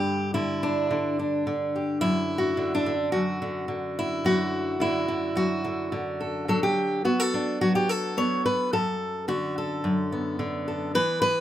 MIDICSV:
0, 0, Header, 1, 2, 480
1, 0, Start_track
1, 0, Tempo, 557103
1, 1737, Time_signature, 4, 2, 24, 8
1, 9826, End_track
2, 0, Start_track
2, 0, Title_t, "Steel-string acoustic guitar"
2, 0, Program_c, 0, 25
2, 0, Note_on_c, 0, 43, 60
2, 0, Note_on_c, 0, 50, 58
2, 0, Note_on_c, 0, 62, 44
2, 0, Note_on_c, 0, 67, 103
2, 288, Note_off_c, 0, 50, 0
2, 289, Note_off_c, 0, 67, 0
2, 293, Note_on_c, 0, 64, 91
2, 299, Note_on_c, 0, 50, 66
2, 319, Note_off_c, 0, 62, 0
2, 542, Note_on_c, 0, 62, 72
2, 770, Note_off_c, 0, 50, 0
2, 781, Note_on_c, 0, 50, 66
2, 1015, Note_off_c, 0, 64, 0
2, 1019, Note_off_c, 0, 62, 0
2, 1029, Note_on_c, 0, 62, 48
2, 1254, Note_off_c, 0, 50, 0
2, 1264, Note_on_c, 0, 50, 66
2, 1513, Note_on_c, 0, 67, 44
2, 1708, Note_off_c, 0, 43, 0
2, 1716, Note_off_c, 0, 67, 0
2, 1732, Note_on_c, 0, 64, 115
2, 1740, Note_on_c, 0, 42, 71
2, 1758, Note_off_c, 0, 62, 0
2, 2053, Note_on_c, 0, 66, 86
2, 2205, Note_off_c, 0, 50, 0
2, 2215, Note_on_c, 0, 50, 65
2, 2362, Note_off_c, 0, 66, 0
2, 2366, Note_on_c, 0, 62, 81
2, 2454, Note_off_c, 0, 50, 0
2, 2466, Note_on_c, 0, 50, 49
2, 2532, Note_off_c, 0, 64, 0
2, 2685, Note_off_c, 0, 62, 0
2, 2689, Note_on_c, 0, 66, 92
2, 2690, Note_off_c, 0, 42, 0
2, 2694, Note_on_c, 0, 42, 70
2, 2934, Note_off_c, 0, 50, 0
2, 2945, Note_on_c, 0, 50, 53
2, 3161, Note_off_c, 0, 50, 0
2, 3171, Note_on_c, 0, 50, 59
2, 3435, Note_on_c, 0, 64, 97
2, 3654, Note_off_c, 0, 42, 0
2, 3656, Note_off_c, 0, 66, 0
2, 3657, Note_on_c, 0, 42, 68
2, 3668, Note_on_c, 0, 66, 115
2, 4126, Note_off_c, 0, 50, 0
2, 4136, Note_on_c, 0, 50, 61
2, 4137, Note_off_c, 0, 64, 0
2, 4148, Note_on_c, 0, 64, 99
2, 4370, Note_off_c, 0, 50, 0
2, 4380, Note_on_c, 0, 50, 52
2, 4610, Note_off_c, 0, 42, 0
2, 4613, Note_on_c, 0, 42, 62
2, 4614, Note_off_c, 0, 66, 0
2, 4624, Note_on_c, 0, 66, 87
2, 4853, Note_off_c, 0, 50, 0
2, 4863, Note_on_c, 0, 50, 48
2, 5091, Note_off_c, 0, 50, 0
2, 5101, Note_on_c, 0, 50, 69
2, 5110, Note_off_c, 0, 64, 0
2, 5347, Note_on_c, 0, 69, 51
2, 5586, Note_on_c, 0, 54, 67
2, 5589, Note_off_c, 0, 66, 0
2, 5593, Note_off_c, 0, 69, 0
2, 5593, Note_on_c, 0, 69, 91
2, 5709, Note_off_c, 0, 69, 0
2, 5712, Note_on_c, 0, 67, 88
2, 5738, Note_off_c, 0, 42, 0
2, 6068, Note_off_c, 0, 50, 0
2, 6071, Note_off_c, 0, 67, 0
2, 6071, Note_on_c, 0, 59, 62
2, 6075, Note_on_c, 0, 66, 85
2, 6200, Note_off_c, 0, 66, 0
2, 6200, Note_on_c, 0, 69, 96
2, 6324, Note_on_c, 0, 62, 50
2, 6556, Note_off_c, 0, 54, 0
2, 6556, Note_off_c, 0, 69, 0
2, 6559, Note_on_c, 0, 54, 60
2, 6559, Note_on_c, 0, 66, 95
2, 6676, Note_off_c, 0, 66, 0
2, 6679, Note_on_c, 0, 67, 91
2, 6800, Note_off_c, 0, 67, 0
2, 6800, Note_on_c, 0, 69, 96
2, 7038, Note_off_c, 0, 59, 0
2, 7041, Note_on_c, 0, 59, 59
2, 7045, Note_on_c, 0, 73, 109
2, 7281, Note_off_c, 0, 73, 0
2, 7285, Note_on_c, 0, 71, 91
2, 7490, Note_off_c, 0, 54, 0
2, 7492, Note_off_c, 0, 62, 0
2, 7511, Note_off_c, 0, 69, 0
2, 7519, Note_on_c, 0, 42, 78
2, 7520, Note_off_c, 0, 71, 0
2, 7524, Note_on_c, 0, 69, 98
2, 7548, Note_off_c, 0, 59, 0
2, 7995, Note_off_c, 0, 69, 0
2, 7995, Note_on_c, 0, 50, 67
2, 7999, Note_on_c, 0, 66, 90
2, 8236, Note_off_c, 0, 66, 0
2, 8253, Note_on_c, 0, 69, 74
2, 8468, Note_off_c, 0, 42, 0
2, 8478, Note_on_c, 0, 42, 77
2, 8722, Note_on_c, 0, 59, 52
2, 8942, Note_off_c, 0, 50, 0
2, 8953, Note_on_c, 0, 50, 69
2, 9189, Note_off_c, 0, 69, 0
2, 9199, Note_on_c, 0, 69, 45
2, 9403, Note_off_c, 0, 42, 0
2, 9405, Note_off_c, 0, 69, 0
2, 9430, Note_off_c, 0, 50, 0
2, 9432, Note_on_c, 0, 52, 68
2, 9435, Note_on_c, 0, 71, 124
2, 9654, Note_off_c, 0, 71, 0
2, 9664, Note_on_c, 0, 71, 113
2, 9826, Note_off_c, 0, 52, 0
2, 9826, Note_off_c, 0, 59, 0
2, 9826, Note_off_c, 0, 71, 0
2, 9826, End_track
0, 0, End_of_file